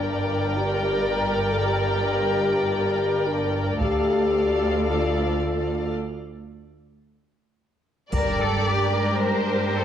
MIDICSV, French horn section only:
0, 0, Header, 1, 2, 480
1, 0, Start_track
1, 0, Key_signature, -2, "minor"
1, 0, Tempo, 500000
1, 9451, End_track
2, 0, Start_track
2, 0, Title_t, "French horn section"
2, 0, Program_c, 0, 60
2, 0, Note_on_c, 0, 62, 68
2, 517, Note_off_c, 0, 62, 0
2, 546, Note_on_c, 0, 67, 63
2, 1059, Note_on_c, 0, 70, 55
2, 1061, Note_off_c, 0, 67, 0
2, 1438, Note_on_c, 0, 69, 52
2, 1439, Note_off_c, 0, 70, 0
2, 1567, Note_on_c, 0, 67, 60
2, 1572, Note_off_c, 0, 69, 0
2, 2609, Note_off_c, 0, 67, 0
2, 2623, Note_on_c, 0, 67, 59
2, 3127, Note_off_c, 0, 67, 0
2, 3130, Note_on_c, 0, 62, 53
2, 3648, Note_on_c, 0, 67, 62
2, 3650, Note_off_c, 0, 62, 0
2, 4687, Note_off_c, 0, 67, 0
2, 4690, Note_on_c, 0, 65, 46
2, 5727, Note_off_c, 0, 65, 0
2, 7795, Note_on_c, 0, 62, 41
2, 7797, Note_on_c, 0, 58, 37
2, 9451, Note_off_c, 0, 58, 0
2, 9451, Note_off_c, 0, 62, 0
2, 9451, End_track
0, 0, End_of_file